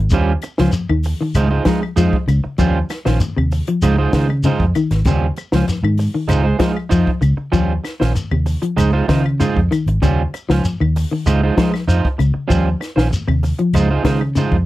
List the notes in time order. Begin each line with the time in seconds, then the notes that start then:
0.10 D#2 G3 C#4 F4, muted clean electric guitar stroke, kick, closed hi-hat, shekere
0.14 C5
0.42 muted clean electric guitar stroke, closed hi-hat, claves, shekere
0.58 C#2 F3 C#4 F4 C5, snare
0.72 muted clean electric guitar stroke, closed hi-hat, shekere
0.89 D#2 D#3, muted clean electric guitar stroke, claves
1.03 muted clean electric guitar stroke, open hi-hat, shekere
1.21 D#3, muted clean electric guitar stroke
1.35 C#2 G#3 D#4 F4 C5, closed hi-hat, claves, shekere
1.51 G#3 D#4 F4 C5
1.65 F3 G#3 D#4 F4, kick, snare, closed hi-hat, shekere
1.82 muted clean electric guitar stroke, claves
1.96 F2 F3 G#3 D#4 F4 C5, closed hi-hat, shekere
2.13 kick
2.27 C#2 C#3, muted clean electric guitar stroke, closed hi-hat, claves, shekere
2.44 muted clean electric guitar stroke
2.58 D#2 F3 G3 C#4 F4 C5, kick, closed hi-hat, shekere
2.90 muted clean electric guitar stroke, snare, closed hi-hat, claves, shekere
3.05 A#1 D#3 C#4 F4 C5, snare
3.20 muted clean electric guitar stroke, closed hi-hat, shekere
3.37 D#2 C3, muted clean electric guitar stroke, claves
3.52 muted clean electric guitar stroke, open hi-hat, shekere
3.67 F3, muted clean electric guitar stroke, closed hi-hat
3.82 C#2 G#3 D#4 F4 C5, closed hi-hat, claves, shekere
3.98 G#3 D#4 F4 C5
4.13 C#3 D#3 G#3 D#4 F4 C5, kick, snare, closed hi-hat, shekere
4.30 muted clean electric guitar stroke, claves
4.43 C#3 G#3 D#4 F4 C5, closed hi-hat, shekere
4.60 F2, kick
4.75 D#3, muted fingered electric bass stroke, muted clean electric guitar stroke, closed hi-hat, claves, shekere
4.91 G#1, muted clean electric guitar stroke, snare, closed hi-hat
5.05 D#2 C#3 G3 C#4 F4 C5, kick, closed hi-hat, shekere
5.36 muted clean electric guitar stroke, closed hi-hat, claves, shekere
5.52 C#2 F3 C#4 F4 C5, snare
5.68 muted clean electric guitar stroke, snare, closed hi-hat, shekere
5.83 G#2 D#3, muted clean electric guitar stroke, claves
5.97 muted clean electric guitar stroke, open hi-hat, shekere
6.14 D#3, muted clean electric guitar stroke
6.28 C#2 G#3 D#4 F4 C5, closed hi-hat, claves, shekere
6.44 G#3 C5
6.59 F3 G#3 D#4 F4 C5, kick, snare, closed hi-hat, shekere
6.74 muted clean electric guitar stroke, claves
6.89 F2 F3 D#4 F4 C5, kick, closed hi-hat, shekere
7.07 kick
7.21 C#2 C#3, muted clean electric guitar stroke, closed hi-hat, claves, shekere
7.37 muted clean electric guitar stroke
7.52 D#2 F3 G3 C#4 F4 C5, kick, closed hi-hat, shekere
7.84 muted clean electric guitar stroke, snare, closed hi-hat, claves, shekere
8.00 A#1 D#3 C#4 F4 C5, snare
8.15 muted clean electric guitar stroke, closed hi-hat, shekere
8.31 D#2 C3, muted clean electric guitar stroke, claves
8.46 muted clean electric guitar stroke, open hi-hat, shekere
8.62 F3, muted clean electric guitar stroke, closed hi-hat
8.77 C#2 G#3 D#4 C5, muted clean electric guitar stroke, closed hi-hat, claves, shekere
8.93 G#3 D#4 F4 C5
9.08 C#3 D#3 D#4 F4 C5, muted clean electric guitar stroke, kick, snare, closed hi-hat, shekere
9.25 muted clean electric guitar stroke, claves
9.40 C#3 G#3 D#4 F4 C5, closed hi-hat, shekere
9.56 F2, kick
9.70 D#3, muted fingered electric bass stroke, muted clean electric guitar stroke, closed hi-hat, claves, shekere
9.86 G#1, muted clean electric guitar stroke, closed hi-hat
10.02 D#2 C#3 G3 C#4 F4 C5, kick, closed hi-hat, shekere
10.34 muted clean electric guitar stroke, closed hi-hat, claves, shekere
10.49 C#2 F3 C#4 F4 C5, snare
10.65 muted clean electric guitar stroke, closed hi-hat, shekere
10.80 D#2 D#3, muted clean electric guitar stroke, claves
10.96 muted clean electric guitar stroke, open hi-hat, shekere
11.11 D#3, muted clean electric guitar stroke
11.26 C#2 G#3 D#4 F4 C5, closed hi-hat, claves, shekere
11.43 G#3 D#4 F4 C5
11.57 F3 G#3 D#4 F4 C5, kick, snare, closed hi-hat, shekere
11.74 muted clean electric guitar stroke, snare, claves
11.88 F2 D#4 F4 C5, closed hi-hat, shekere
12.05 kick
12.18 C#2 C#3, muted clean electric guitar stroke, closed hi-hat, claves, shekere
12.34 muted clean electric guitar stroke
12.48 D#2 F3 G3 C#4 F4 C5, kick, closed hi-hat, shekere
12.81 muted clean electric guitar stroke, snare, closed hi-hat, claves, shekere
12.96 A#1 D#3 C#4 F4 C5, snare
13.11 muted clean electric guitar stroke, closed hi-hat, shekere
13.28 D#2 C3, muted clean electric guitar stroke, claves
13.43 muted clean electric guitar stroke, open hi-hat, shekere
13.59 F3, muted clean electric guitar stroke, closed hi-hat
13.73 C#2 G#3 D#4 F4 C5, closed hi-hat, claves, shekere
13.90 G#3 D#4 F4 C5
14.04 C#3 D#3 G#3 D#4 F4 C5, kick, snare, closed hi-hat, shekere
14.21 muted clean electric guitar stroke, claves
14.35 C#3 G#3 D#4 F4 C5, closed hi-hat, shekere
14.51 F2, kick